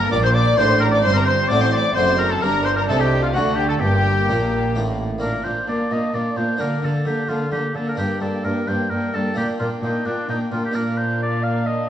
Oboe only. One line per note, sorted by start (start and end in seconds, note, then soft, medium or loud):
0.00 0.11 A#4 medium
0.12 0.24 D5 medium
0.24 0.37 C5 medium
0.35 0.60 D5 medium
0.58 0.80 C5 loud
0.81 0.86 A#4 medium
0.91 0.97 D5 medium
1.02 1.13 C5 medium
1.14 1.25 A#4 medium
1.25 1.49 C5 medium
1.48 1.62 D5 medium
1.60 1.72 C5 medium
1.72 1.95 D5 medium
1.95 2.18 C5 medium
2.18 2.32 A#4 medium
2.30 2.41 A4 medium
2.42 2.67 A#4 medium
2.65 2.76 C5 medium
2.76 2.82 A#4 medium
2.89 3.01 A4 medium
3.00 3.22 G4 medium
3.23 3.28 F4 medium
3.34 3.57 F#4 medium
3.56 3.68 G4 medium
3.69 3.81 A4 medium
3.80 4.74 G4 medium
5.21 5.46 A#4 medium
5.45 5.68 C5 medium
5.68 5.93 D5 medium
5.92 6.16 D#5 medium
6.14 6.38 D5 medium
6.37 6.62 C5 medium
6.61 6.86 A#4 medium
6.85 7.06 A4 medium
7.07 7.31 G4 medium
7.29 7.52 F4 medium
7.52 7.77 G4 medium
7.75 7.87 A4 medium
7.89 7.97 A#4 medium
7.98 8.21 G4 medium
8.21 8.44 A4 medium
8.44 8.70 A#4 medium
8.68 8.92 C5 medium
8.90 9.16 A#4 medium
9.14 9.36 A4 medium
9.37 9.47 G4 medium
9.60 9.70 F4 medium
9.83 10.08 D#4 medium
10.06 10.29 D4 medium
10.30 10.40 D#4 medium
10.53 10.63 F4 medium
10.65 10.76 G4 medium
10.75 10.99 A#4 medium
10.98 11.21 C5 medium
11.22 11.44 D5 medium
11.43 11.68 F5 medium
11.66 11.89 D#5 medium